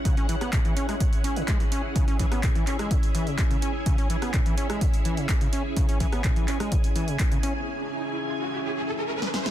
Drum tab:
HH |xxoxxxoxxxoxxxo-|xxoxxxoxxxoxxxo-|xxoxxxoxxxoxxxo-|xxoxxxoxxxoxxxo-|
CP |----x-------x---|----x-x-----x---|----x-------x---|----x-x-----x---|
SD |---r---r--------|---r---r--------|---r---r--------|---r---r--------|
BD |o---o---o---o---|o-o-o---o---o---|o---o---o---o---|o-o-o---o---o---|

HH |----------------|
CP |----------------|
SD |-------------ooo|
BD |----------------|